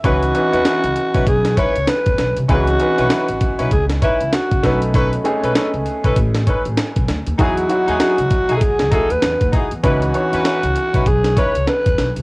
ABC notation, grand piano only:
X:1
M:4/4
L:1/8
Q:"Swing 16ths" 1/4=98
K:C#m
V:1 name="Grand piano"
[E,CDB] [E,CDB]4 z3 | [E,CDG] [E,CDB]4 z2 [A,CDB]- | [A,CDB] [A,CDG]4 z3 | [F,DEG] [F,DEF]4 z3 |
[E,CDB] [E,CDc]4 z3 |]